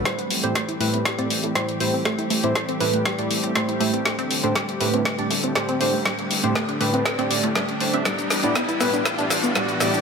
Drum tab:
HH |xxoxxxoxxxoxxxo-|xxoxxxoxxxoxxxox|xxoxxxoxxxoxxxo-|xxoxxxoxxxoxxxox|
SH |----------------|----------------|----------------|----------------|
SD |o---o---o---o---|o---o---o---o---|o---o---o---o---|o---o---o---o---|
BD |o---o---o---o---|o---o---o---o---|o---o---o---o---|o---o---o---o---|

HH |xxoxxxoxxxoxxxo-|
SH |xxxxxxxxxxxxxxxx|
SD |o-o-o-o-o-o-o-o-|
BD |o---o---o---o---|